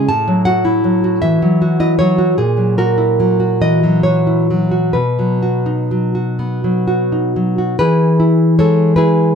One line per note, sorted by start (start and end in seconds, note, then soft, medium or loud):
0.00 0.10 C#4 medium
0.09 1.42 A2 medium
0.09 0.45 A5 loud
0.28 0.83 F#3 medium
0.45 1.03 F#4 medium
0.45 1.20 F#5 medium
0.65 1.79 E4 medium
0.84 1.22 F#3 medium
1.04 1.60 F#4 medium
1.22 2.38 E3 medium
1.22 1.78 E5 medium
1.42 1.99 F#3 medium
1.62 2.17 F#4 medium
1.80 2.38 E4 medium
1.80 1.98 D#5 medium
1.99 2.38 F#3 medium
1.99 2.36 C#5 medium
2.18 2.38 F#4 soft
2.38 4.92 A#2 medium
2.38 2.76 G#4 medium
2.57 3.19 F#3 soft
2.78 3.39 F#4 medium
2.78 3.58 A#4 medium
2.98 4.26 E4 soft
3.20 3.82 F#3 soft
3.40 4.03 F#4 soft
3.61 4.96 E3 soft
3.61 4.03 D#5 medium
3.83 4.49 F#3 soft
4.03 4.70 F#4 soft
4.03 4.91 C#5 medium
4.27 4.96 E4 soft
4.50 4.96 F#3 soft
4.71 4.95 F#4 soft
4.93 7.75 B2 medium
4.93 7.30 B4 medium
5.19 5.90 F#3 soft
5.42 6.14 F#4 soft
5.66 7.11 D#4 soft
5.91 6.63 F#3 soft
6.15 6.86 F#4 soft
6.39 7.80 B3 soft
6.64 7.35 F#3 soft
6.88 7.57 F#4 soft
7.12 7.80 D#4 soft
7.36 7.79 F#3 soft
7.58 7.80 F#4 soft
7.79 9.35 E3 medium
7.79 8.55 G#4 medium
7.79 8.55 B4 medium
8.20 8.96 E4 medium
8.59 9.35 G#3 medium
8.59 8.96 A4 medium
8.59 8.96 C#5 medium
8.96 9.35 E4 medium
8.96 9.35 G#4 medium
8.96 9.35 B4 medium